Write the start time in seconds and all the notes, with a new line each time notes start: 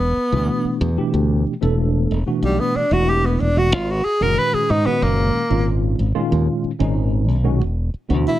Already playing: E1 B3
0.17 muted fingered electric bass stroke
0.32 D2 B2 E3 A3 D4 F#4
0.65 muted fingered electric bass stroke
0.81 E2
0.97 B2 E3 A3 D4 G4, muted fingered electric bass stroke
1.14 D2
1.47 muted fingered electric bass stroke
1.61 E1 B2 E3 A3 D4 A4
2.11 E1
2.26 B2 E3 A3 D4 F#4, muted fingered electric bass stroke
2.42 B1 G3
2.60 B3
2.75 D4, muted fingered electric bass stroke
2.91 E1 B2 E3 A3 D4 E4 F#4
3.10 G4
3.26 B3
3.40 E1 D4
3.55 B2 E3 A3 D4 F#4
3.72 G#1 F4
3.90 F#4
4.05 G#4
4.20 F#1 A#2 D#3 G#3 C#4 F#4 A#4
4.38 B4
4.54 G#4, muted fingered electric bass stroke
4.70 G#2 D#4
4.85 A#2 D#3 G#3 B3 C#4 F#4, muted fingered electric bass stroke
5.02 F#1 A#3
5.35 muted fingered electric bass stroke
5.50 G#1 A#2 D#3 G#3 C#4 F4
5.99 G#1
6.14 A#2 D#3 G#3 C#4 F4, muted fingered electric bass stroke
6.32 D#2
6.64 muted fingered electric bass stroke
6.79 G#1 A#2 D#3 G#3 C#4 D#4
7.28 B1
7.44 A#2 D#3 G#3 C#4 F#4
7.62 E1
7.94 muted fingered electric bass stroke
8.09 D2 B2 E3 A3 D4 F#4
8.28 E4